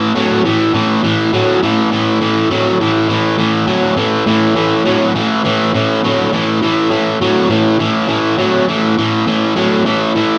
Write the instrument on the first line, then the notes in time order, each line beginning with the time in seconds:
distorted electric guitar
Already playing: A2 E3
0.15 A2 F#3
0.45 A2 E3
0.74 A2 E3
1.03 A2 E3
1.33 A2 F#3
1.63 A2 E3
1.91 A2 E3
2.21 A2 E3
2.51 A2 F#3
2.80 A2 E3
3.09 A2 E3
3.38 A2 E3
3.67 A2 F#3
3.97 A2 E3
4.26 A2 E3
4.56 A2 E3
4.85 A2 F#3
5.15 A2 E3
5.45 A2 E3
5.74 A2 E3
6.04 A2 F#3
6.33 A2 E3
6.62 A2 E3
6.90 A2 E3
7.21 A2 F#3
7.49 A2 E3
7.79 A2 E3
8.08 A2 E3
8.37 A2 F#3
8.68 A2 E3
8.98 A2 E3
9.27 A2 E3
9.56 A2 F#3
9.86 A2 E3
10.15 A2 E3